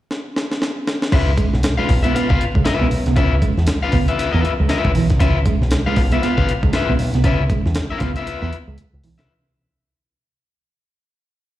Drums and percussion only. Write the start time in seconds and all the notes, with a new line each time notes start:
0.11 snare
0.36 snare
0.51 snare
0.62 snare
0.87 snare
1.02 snare
1.12 kick, crash
1.38 kick, closed hi-hat
1.54 snare
1.63 snare, closed hi-hat
1.89 kick, snare, open hi-hat
2.04 closed hi-hat
2.15 snare, closed hi-hat
2.30 kick
2.41 closed hi-hat
2.55 kick
2.65 snare, closed hi-hat
2.91 open hi-hat
3.06 snare, closed hi-hat
3.16 kick, closed hi-hat
3.42 kick, closed hi-hat
3.58 snare
3.67 snare, closed hi-hat
3.92 kick, open hi-hat
4.08 closed hi-hat
4.19 snare, closed hi-hat
4.45 closed hi-hat
4.69 snare, closed hi-hat
4.85 kick
4.95 open hi-hat
5.10 kick, snare, closed hi-hat
5.20 kick, closed hi-hat
5.46 kick, closed hi-hat
5.62 snare
5.71 snare, closed hi-hat
5.96 kick, snare, open hi-hat
6.12 closed hi-hat
6.23 snare, closed hi-hat
6.38 kick
6.49 closed hi-hat
6.63 kick
6.73 snare, closed hi-hat
6.99 open hi-hat
7.14 snare, closed hi-hat
7.24 kick, closed hi-hat
7.50 kick, closed hi-hat
7.66 snare
7.75 snare, closed hi-hat
8.00 kick, snare, closed hi-hat
8.16 closed hi-hat
8.27 closed hi-hat
8.53 closed hi-hat
8.78 closed hi-hat
9.04 open hi-hat
9.18 snare, closed hi-hat